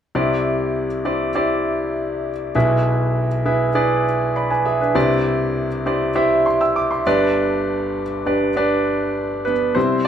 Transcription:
0.15 C2 C3 E4 G4 C5 D5
1.05 E4 G4 C5 D5
1.35 E4 G4 C5 D5
2.55 B1 B2 E4 G#4 B4 E5
3.45 E4 G#4 B4 E5
3.75 E4 G#4 B4 D5
4.36 D5 B5
4.50 B4 G#5
4.66 G#4 E5
4.81 D4 B4
4.95 C2 C3 E4 G4 C5 D5
5.86 E4 G4 C5 D5
6.15 E4 G4 C5 E5
6.46 E5 C6
6.61 G5 E6
6.76 D6
6.91 E5 C6
7.07 G1 G2 D4 G4 B4 D5
8.26 D4 G4 B4 D5
8.56 D4 G4 B4 D5
9.45 B3 B4
9.75 C3 G3 C4 E4 C5

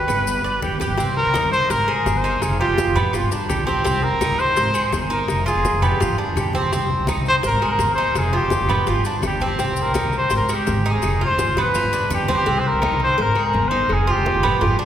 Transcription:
Already playing: B4
0.08 G1 B4, low bongo, high conga, claves, maracas
0.27 high conga, maracas
0.44 G1 D5, high conga, maracas
0.62 G4, low bongo, high conga, claves, maracas
0.71 G1
0.80 G4, low bongo, high conga, maracas
0.90 G1
0.98 C2 C4, high bongo, high conga, maracas
1.16 A#4, high bongo, high conga
1.25 C2
1.34 D#4, high bongo, high conga, claves, maracas
1.43 C2
1.52 C5, high bongo, high conga, maracas
1.70 G#1 A#4 C5, high bongo, high conga, maracas
1.79 G#2
1.88 G#4, high bongo, high conga, claves
1.94 A#4
2.06 G1, high bongo, low bongo, high conga, maracas
2.17 C5
2.24 D#4, maracas
2.42 F1 G#4, high bongo, high conga, claves, maracas
2.60 F4 G4, high conga
2.68 F1
2.78 high bongo, high conga, maracas
2.87 F1
2.96 B3, high bongo, high conga, low conga, claves, maracas
3.13 G1 F4, high bongo, high conga, maracas
3.23 G2
3.32 D4, high bongo, high conga, maracas
3.48 B1 G4, high bongo, low bongo, high conga, claves, maracas
3.66 C4 G4, high bongo, high conga, maracas
3.84 C2 C4, high bongo, high conga, maracas
4.03 A#4, high bongo, high conga
4.12 C2
4.21 D#4, high bongo, high conga, claves, maracas
4.30 D#2
4.39 C5, high bongo, high conga, maracas
4.56 G#1 C5, high bongo, high conga, maracas
4.66 G#2
4.74 G#4, high bongo, high conga, claves, maracas
4.92 G1, high bongo, low bongo, high conga, maracas
5.10 D#4 A#4, maracas
5.28 F1, high bongo, high conga, claves, maracas
5.46 F4 G#4, high conga, maracas
5.55 F1
5.65 high bongo, high conga, maracas
5.74 F1
5.82 B3 G4, high bongo, high conga, low conga, claves, maracas
6.00 G1 F4, high bongo, high conga, low conga, maracas
6.09 G2
6.18 D4, high bongo, high conga
6.36 B1 G4, high bongo, low bongo, high conga, claves, maracas
6.53 C4 G4, high bongo, high conga, maracas
6.72 C2 C4, high bongo, high conga, maracas
6.90 high bongo, high conga
6.99 C2
7.07 D#4, high bongo, high conga, claves, maracas
7.17 C2
7.25 C5, high bongo, high conga, maracas
7.43 G#1 A#4 C5, high bongo, high conga, maracas
7.53 G#2
7.61 G#4, high bongo, high conga, claves
7.71 A#4
7.79 G1, high bongo, low bongo, high conga, maracas
7.94 D#4 C5, maracas
8.15 F1 G#4, high bongo, high conga, claves, maracas
8.33 F4, high conga
8.37 G4
8.43 F1
8.50 high bongo, high conga, maracas
8.61 F1
8.69 B3, high bongo, high conga, low conga, claves, maracas
8.86 G1 F4, high bongo, high conga, maracas
8.97 G2
9.05 D4, high bongo, high conga, maracas
9.22 G1, high bongo, low bongo, high conga, claves, maracas
9.27 G4
9.40 C4, high bongo, high conga, maracas
9.46 G4
9.59 C2 C4, high bongo, high conga, maracas
9.76 high bongo, high conga, maracas
9.82 A#4
9.86 C2
9.94 D#4, high bongo, high conga, claves, maracas
10.04 C2
10.13 high bongo, high conga, maracas
10.17 C5
10.30 G#1 C5, high bongo, high conga, maracas
10.36 A#4
10.40 G#2
10.49 G#3, high bongo, high conga, claves, maracas
10.54 G4
10.67 G#1, high bongo, low bongo, high conga, maracas
10.85 D#4, maracas
10.91 G#4
11.02 F1, high bongo, high conga, claves, maracas
11.21 F4 C5, high conga
11.30 F1
11.39 high bongo, high conga, maracas
11.48 F1
11.57 B3, high bongo, high conga, low conga, claves, maracas
11.61 B4
11.75 G1 F4, high conga, maracas
11.84 G2
11.92 D4, low bongo, high conga, maracas
12.10 G1 G4, low bongo, high conga, claves, maracas
12.28 C4, low bongo, high conga, maracas
12.33 G4
12.46 C2 C4, cowbell, high conga
12.59 C5
12.65 A#4, high conga
12.73 C2
12.82 D#4, cowbell, high conga, claves
12.92 C2
13.00 C5, cowbell, high conga
13.18 G#1 A#4 C5, cowbell, high conga
13.27 G#2
13.35 G#4, high conga, claves
13.45 A#4
13.53 G1, cowbell, high conga
13.68 D#4 C5, cowbell
13.89 F1 G#4, cowbell, high conga, claves
14.07 F4 G4, high conga
14.16 F1
14.26 cowbell, high conga
14.35 F1
14.43 B3, cowbell, high conga, low conga, claves
14.61 G1 F4, cowbell, high conga, low conga
14.71 G2
14.79 D4

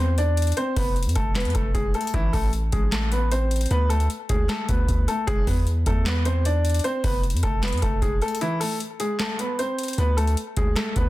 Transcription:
Already playing: E2 C5
0.00 C4
0.18 D4 D5, closed hi-hat
0.37 closed hi-hat
0.42 closed hi-hat
0.47 closed hi-hat
0.52 closed hi-hat
0.57 C4 C5, closed hi-hat
0.76 F1 B3 B4, kick, open hi-hat
0.96 closed hi-hat
1.03 F2, closed hi-hat
1.09 closed hi-hat
1.15 F1 A3 A4, kick, closed hi-hat
1.35 B3 B4, snare, clap, closed hi-hat
1.40 closed hi-hat
1.45 F2, closed hi-hat
1.50 closed hi-hat
1.55 F1 A3 A4, kick, closed hi-hat
1.74 F1 G#3 G#4, kick, closed hi-hat
1.94 A3 A4, closed hi-hat
2.01 closed hi-hat
2.07 closed hi-hat
2.14 A1 E3 E4, kick, closed hi-hat
2.33 A1 A3 A4, kick, open hi-hat
2.53 closed hi-hat
2.72 A1 G#3 G#4, kick, closed hi-hat
2.92 A3 A4, snare, clap, closed hi-hat
3.12 B3 B4, closed hi-hat
3.32 C4 C5, closed hi-hat
3.51 closed hi-hat
3.56 closed hi-hat
3.61 closed hi-hat
3.66 closed hi-hat
3.71 D2 B3 B4, closed hi-hat
3.89 A3 A4, closed hi-hat
4.00 closed hi-hat
4.10 closed hi-hat
4.29 D2 G#3 G#4, kick, closed hi-hat
4.49 A3 A4, snare, clap, closed hi-hat
4.69 D2 B3 B4, kick, closed hi-hat
4.88 D2, kick, closed hi-hat
5.08 A3 A4, closed hi-hat
5.27 E1 G#3 G#4, kick, closed hi-hat
5.47 E2 B3 B4, kick, open hi-hat
5.67 closed hi-hat
5.86 E2 A3 A4, kick, closed hi-hat
6.06 B3 B4, snare, clap, closed hi-hat
6.25 C4 C5, closed hi-hat
6.45 D4 D5, closed hi-hat
6.65 closed hi-hat
6.70 closed hi-hat
6.74 closed hi-hat
6.79 closed hi-hat
6.84 C4 C5, closed hi-hat
7.04 F1 B3 B4, kick, open hi-hat
7.24 closed hi-hat
7.30 F2, closed hi-hat
7.37 closed hi-hat
7.43 F1 A3 A4, kick, closed hi-hat
7.63 B3 B4, snare, clap, closed hi-hat
7.68 closed hi-hat
7.72 F2, closed hi-hat
7.77 closed hi-hat
7.82 F1 A3 A4, kick, closed hi-hat
8.02 F1 G#3 G#4, kick, closed hi-hat
8.22 A3 A4, closed hi-hat
8.28 closed hi-hat
8.35 closed hi-hat
8.41 E3 E4, closed hi-hat
8.60 A3 A4, open hi-hat
8.80 closed hi-hat
9.00 G#3 G#4, closed hi-hat
9.19 A3 A4, snare, clap, closed hi-hat
9.39 B3 B4, closed hi-hat
9.59 C4 C5, closed hi-hat
9.78 closed hi-hat
9.83 closed hi-hat
9.88 closed hi-hat
9.93 closed hi-hat
9.98 D2 B3 B4, closed hi-hat
10.17 A3 A4, closed hi-hat
10.27 closed hi-hat
10.37 closed hi-hat
10.57 D2 G#3 G#4, kick, closed hi-hat
10.76 A3 A4, snare, clap, closed hi-hat
10.96 D2 B3 B4, kick, closed hi-hat

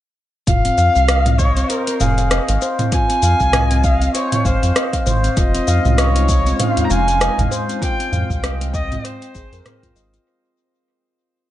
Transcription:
0.47 F1 F4 F5, kick, closed hi-hat, mid tom, shaker
0.65 C4, closed hi-hat, shaker
0.78 F2 F5, shaker
0.95 C2 F5, shaker
1.08 D#5, cross-stick, closed hi-hat, shaker
1.26 C4, closed hi-hat, mid tom, shaker
1.38 C#5 D#5, kick, shaker
1.57 C4, closed hi-hat, shaker
1.69 A#4 C5, closed hi-hat, shaker
1.87 C4, closed hi-hat, shaker
2.00 F1 G#4 F5, mid tom, shaker
2.18 F5, closed hi-hat, shaker
2.31 D#5, cross-stick, closed hi-hat, shaker
2.48 G#1 F5, closed hi-hat, shaker
2.62 C5, shaker
2.79 C4, closed hi-hat, mid tom, shaker
2.92 F4 G#5, kick, closed hi-hat, shaker
3.10 C4, closed hi-hat, shaker
3.23 F2 F5, shaker
3.40 C2 F5, kick, shaker
3.53 D#5, cross-stick, closed hi-hat, mid tom, shaker
3.71 C4, closed hi-hat, shaker
3.84 D#5 F5, kick, shaker
4.02 C4, closed hi-hat, shaker
4.15 C5 C#5, closed hi-hat, shaker
4.32 C4, closed hi-hat, mid tom, shaker
4.45 G#1 C5 F5, kick, shaker
4.63 F2 F5, closed hi-hat, shaker
4.76 D#5, cross-stick, closed hi-hat, shaker
4.93 F5, kick, closed hi-hat, shaker
5.06 G#1 C5, mid tom, shaker
5.24 C4, closed hi-hat, shaker
5.37 F1 G#3 C#4 D#4 F4 D#5, kick, closed hi-hat, shaker
5.55 C4, closed hi-hat, shaker
5.68 F2 F5, shaker
5.85 C2 F5, mid tom, shaker
5.98 C#5 D#5, cross-stick, closed hi-hat, shaker
6.16 C4, closed hi-hat, shaker
6.29 D#5, kick, shaker
6.46 C4, closed hi-hat, shaker
6.59 C5 F5, closed hi-hat, mid tom, shaker
6.77 C4, closed hi-hat, udu, shaker
6.84 A#5
6.90 F1 F5 G#5, shaker
7.08 F5, closed hi-hat, shaker
7.21 D#5, cross-stick, closed hi-hat, shaker
7.38 G#1 F5, closed hi-hat, mid tom, udu, shaker
7.51 C5, shaker
7.69 C4, closed hi-hat, shaker
7.82 C4 F4 G5, kick, closed hi-hat, shaker
8.00 C4, closed hi-hat, shaker
8.12 F2 F5, mid tom, shaker
8.30 C2 F5, kick, udu, shaker
8.43 D#5, cross-stick, closed hi-hat, shaker
8.61 C4, closed hi-hat, shaker
8.74 D#5, kick, udu, shaker
8.91 C4, closed hi-hat, mid tom, shaker
9.04 C5, closed hi-hat, shaker
9.22 C4, closed hi-hat, shaker
9.35 G#1 G#4, kick, shaker
9.52 F2 A#4, closed hi-hat, shaker
9.66 C4, cross-stick, closed hi-hat, mid tom, shaker
9.83 F4, kick, closed hi-hat, udu, shaker
9.96 G#1 D#5, shaker
10.14 F4, closed hi-hat, shaker

